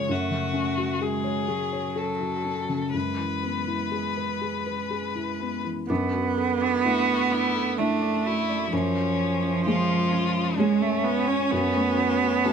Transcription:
Already playing: C#3 G#3 C#4 F4 G#4 C#5
0.09 F#2 A3 F#4
0.31 C#3
0.53 C#4
0.78 F#4
1.01 G#3 G#4
1.24 C#5
1.48 F#3 G#4
1.73 C#5
1.96 A4
2.20 F#4
2.45 C#4
2.69 C#3
2.94 F#2 G#3 B4
3.18 E3
3.43 B3
3.68 E4
3.91 G#4
4.17 B4
4.41 G#4
4.66 B4
4.90 G#4
5.15 E4
5.40 B3
5.65 E3
5.88 F#2 B3 D4
6.14 F#4
6.37 A4
6.61 D4
6.85 A3 D4 E4 F#4
7.31 D4 E4
7.55 A4
7.78 A3 D4 E4 D5
8.02 D4
8.25 E4 F#4
8.49 D5
8.71 F#2 F3 C#4
8.96 F4
9.19 G#5
9.42 C#4
9.66 G#3 C#4 F4 G#4
10.12 C#4
10.57 G#3 C#4 G#4 C#5
10.82 A3 C#4
11.04 B3 F4
11.28 C#4 C#5
11.51 F#2 B3 F#4
11.76 A3
11.98 C#5
12.21 F#4
12.44 A3 C#4 F#4 A4

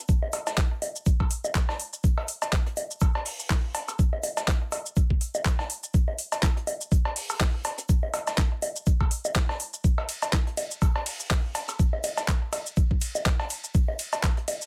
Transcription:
0.09 kick, shaker
0.23 low woodblock
0.33 open hi-hat, cowbell, high bongo, shaker
0.47 snare, cowbell, low woodblock, shaker
0.57 kick, snare, clap, shaker
0.82 open hi-hat, high bongo, shaker
0.96 shaker
1.06 kick, shaker
1.20 kick, cowbell
1.30 open hi-hat, shaker
1.44 high bongo, shaker
1.55 kick, snare, clap, shaker
1.69 snare, cowbell
1.79 open hi-hat, shaker
1.93 shaker
2.04 kick, shaker
2.18 cowbell, low woodblock
2.28 open hi-hat, shaker
2.42 closed hi-hat, cowbell, low woodblock, shaker
2.52 kick, snare, clap, shaker
2.66 closed hi-hat
2.77 open hi-hat, high bongo, shaker
2.91 shaker
3.00 kick, cowbell, shaker
3.15 cowbell
3.25 open hi-hat
3.40 shaker
3.50 kick, snare, clap, shaker
3.75 open hi-hat, cowbell, shaker
3.88 closed hi-hat, cowbell, shaker
3.99 kick, shaker
4.13 low woodblock
4.23 open hi-hat, high bongo, shaker
4.37 snare, cowbell, low woodblock, shaker
4.48 kick, snare, clap, shaker
4.72 open hi-hat, cowbell, high bongo, shaker
4.86 shaker
4.96 kick, shaker
5.10 kick
5.21 open hi-hat, shaker
5.35 high bongo, shaker
5.45 kick, snare, clap, shaker
5.59 snare, cowbell
5.70 open hi-hat, shaker
5.84 shaker
5.94 kick, shaker
6.08 low woodblock
6.18 open hi-hat, shaker
6.32 closed hi-hat, cowbell, low woodblock, shaker
6.43 kick, snare, clap, cowbell, shaker
6.57 closed hi-hat
6.67 open hi-hat, high bongo, shaker
6.81 shaker
6.92 kick, shaker
7.05 cowbell
7.16 open hi-hat
7.30 cowbell, shaker
7.40 kick, snare, clap, shaker
7.64 open hi-hat, cowbell, shaker
7.78 closed hi-hat, shaker
7.89 kick, shaker
8.03 low woodblock
8.14 open hi-hat, cowbell, high bongo, shaker
8.27 snare, cowbell, low woodblock, shaker
8.38 kick, snare, clap, shaker
8.62 open hi-hat, high bongo, shaker
8.76 shaker
8.87 kick, shaker
9.01 kick, cowbell
9.11 open hi-hat, shaker
9.25 high bongo, shaker
9.35 kick, snare, clap, shaker
9.49 snare, cowbell
9.60 open hi-hat, shaker
9.74 shaker
9.84 kick, shaker
9.98 cowbell, low woodblock
10.09 open hi-hat, ride, shaker
10.22 closed hi-hat, cowbell, low woodblock, shaker
10.33 kick, snare, clap, shaker
10.47 closed hi-hat
10.57 open hi-hat, ride, high bongo, shaker
10.71 shaker
10.82 kick, cowbell, shaker
10.96 cowbell
11.06 open hi-hat, ride
11.20 shaker
11.31 kick, snare, clap, shaker
11.55 open hi-hat, ride, cowbell, shaker
11.68 closed hi-hat, cowbell, shaker
11.79 kick, shaker
11.93 low woodblock
12.04 open hi-hat, ride, high bongo, shaker
12.17 snare, cowbell, low woodblock, shaker
12.28 kick, snare, clap, shaker
12.53 open hi-hat, ride, cowbell, high bongo, shaker
12.66 shaker
12.77 kick, shaker
12.91 kick
13.01 open hi-hat, ride, shaker
13.15 high bongo, shaker
13.26 kick, snare, clap, shaker
13.39 snare, cowbell
13.49 open hi-hat, ride, shaker
13.64 shaker
13.75 kick, shaker
13.88 low woodblock
13.99 open hi-hat, ride, shaker
14.13 closed hi-hat, cowbell, low woodblock, shaker
14.23 kick, snare, clap, cowbell, shaker
14.37 closed hi-hat
14.48 open hi-hat, ride, high bongo, shaker
14.62 shaker

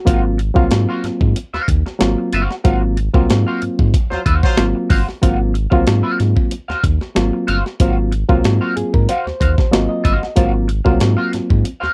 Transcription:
0.05 G#1 F#3 A#3 C4 F4 F#4 C5 F5, kick, closed hi-hat
0.24 muted clean electric guitar stroke
0.38 muted clean electric guitar stroke, closed hi-hat
0.54 C2 F#3 A#3 C4 F4 F#4 C5 F5, kick
0.71 G#2, muted clean electric guitar stroke, snare, closed hi-hat
0.89 F#4 C5 F5
1.04 G#2, muted clean electric guitar stroke, snare, closed hi-hat
1.21 G#2, muted clean electric guitar stroke, kick
1.36 muted clean electric guitar stroke, closed hi-hat
1.53 D#2 F#4 C5 F5, snare
1.68 D#2, kick, closed hi-hat
1.86 muted clean electric guitar stroke, snare
1.99 G#1 F#3 A#3 C4 F4, snare, closed hi-hat
2.18 muted clean electric guitar stroke
2.33 G1 F#4 C5 F5, closed hi-hat
2.50 muted clean electric guitar stroke, snare
2.64 G#1 F#3 A#3 C4 F4 F#4 C5 F5, kick, closed hi-hat
2.82 muted clean electric guitar stroke
2.97 muted clean electric guitar stroke, closed hi-hat
3.14 C2 F#3 A#3 C4 F4 F#4 C5 F5, kick
3.30 G#2, muted clean electric guitar stroke, snare, closed hi-hat
3.47 F#4 C5 F5
3.62 G#2, muted clean electric guitar stroke, closed hi-hat
3.79 G#2, muted clean electric guitar stroke, kick
3.94 kick, closed hi-hat
4.10 D#2 F#3 F4 C5, muted clean electric guitar stroke, snare
4.26 D#2 F#4 C5 F5, kick, closed hi-hat
4.43 F#3 F4 C5, muted clean electric guitar stroke, kick, snare
4.57 G#1 F#3 A#3 C4 F4, muted clean electric guitar stroke, snare, closed hi-hat
4.75 muted clean electric guitar stroke
4.90 G1 F#4 C5 F5, kick, open hi-hat
5.07 muted clean electric guitar stroke, snare
5.22 G#1 F#3 A#3 C4 F4 F#4 C5 F5, kick, closed hi-hat
5.39 muted clean electric guitar stroke
5.54 muted clean electric guitar stroke, closed hi-hat
5.70 C2 F#3 A#3 C4 F4 F#4 C5 F5, kick
5.87 G#2, snare, closed hi-hat
6.03 F#4 C5 F5
6.19 G#2, muted clean electric guitar stroke, snare, closed hi-hat
6.36 muted clean electric guitar stroke, kick
6.51 muted clean electric guitar stroke, closed hi-hat
6.68 D#2 F#4 C5 F5, snare
6.84 D#2, muted clean electric guitar stroke, kick, closed hi-hat
7.01 muted clean electric guitar stroke, snare
7.15 G#1 F#3 A#3 C4 F4, snare, closed hi-hat
7.33 muted clean electric guitar stroke
7.47 G1 F#4 C5 F5, closed hi-hat
7.65 muted clean electric guitar stroke, snare
7.80 G#1 F#3 A#3 C4 F4 F#4 C5 F5, kick, closed hi-hat
7.97 muted clean electric guitar stroke
8.12 muted clean electric guitar stroke, closed hi-hat
8.28 C2 F#3 A#3 C4 F4 F#4 C5 F5, kick
8.43 G#2, muted clean electric guitar stroke, snare, closed hi-hat
8.61 F#4 C5 F5
8.76 G#2 G#4, muted clean electric guitar stroke, closed hi-hat
8.94 G#2 A#4, muted clean electric guitar stroke, kick
9.09 F#4 C5 F5, closed hi-hat
9.26 D#2, muted clean electric guitar stroke, snare
9.40 D#2 F#4 C5 F5, kick, closed hi-hat
9.58 muted clean electric guitar stroke, kick, snare
9.71 G#1 F#3 A#3 C4 F4 D#5, muted clean electric guitar stroke, snare, closed hi-hat
9.89 D#5, muted clean electric guitar stroke
10.04 G1 F#4 C5 F5, kick, closed hi-hat
10.22 muted clean electric guitar stroke, snare
10.36 G#1 F#3 A#3 C4 F4 F#4 C5 F5, kick, closed hi-hat
10.54 muted clean electric guitar stroke
10.68 muted clean electric guitar stroke, closed hi-hat
10.85 C2 F#3 A#3 B3 F4 F#4 C5 F5, kick
10.92 C4
11.00 G#2, muted clean electric guitar stroke, snare, closed hi-hat
11.17 F#4 C5 F5
11.32 G#2, muted clean electric guitar stroke, snare, closed hi-hat
11.50 G#2, muted clean electric guitar stroke, kick
11.64 muted clean electric guitar stroke, closed hi-hat
11.80 D#2 F#4 C5 F5, snare

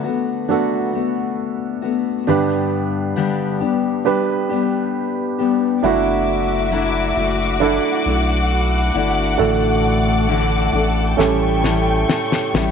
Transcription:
Already playing: D3 D4 F#4 B4
0.04 A3 B3 F#4
0.48 F#3 A3 B3 D4 F#4 A4
0.93 A3 B3 F#4
1.82 A3 B3 F#4
2.27 G2 D3 G3 B3 D4 G4 B4
3.16 G2 D3 G3 B3 D4 G4
3.60 G3 B3 D4 G4
4.05 G3 B3 D4 G4 B4
4.49 G3 B3 D4 G4
5.39 G3 B3 D4 G4
5.83 F#1 F#3 A3 D4 E4 F#4 E5 D6
6.72 F#3 A3 D4 E4
7.16 F#1 A3 D4 E4
7.60 F#3 A3 D4 E4 A4 F#5
8.05 B1 A3 D4 E4
8.94 G1 A3 D4 E4
9.38 A1 A2 D3 A3 D4 F#4 A4 D6
10.29 A2 D3 A3 D4 F#4
10.73 A1 A3 D4 F#4
11.17 A1 A2 E3 G3 C#4 G4 A4 G5 C#6, snare
11.21 E4
11.63 G3 C#4 E4, snare
12.09 snare
12.32 snare
12.53 A1 G3 C#4 E4, snare

